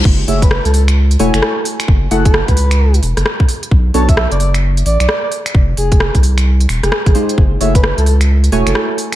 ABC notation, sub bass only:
X:1
M:4/4
L:1/16
Q:"Swing 16ths" 1/4=131
K:F#m
V:1 name="Sub bass" clef=bass
F,,,2 F,,,3 C,,4- C,, E,,, F,,, z4 | F,,,2 F,,,3 C,,4- C,, E,,, F,,, z4 | B,,,2 B,,,3 F,,,4- F,,, A,,, B,,, z4 | =F,,,2 F,,,3 =C,,4- C,, _E,,, F,,, z _A,,, z2 |
F,,,2 F,,,3 C,,4- C,, E,,, F,,, z4 |]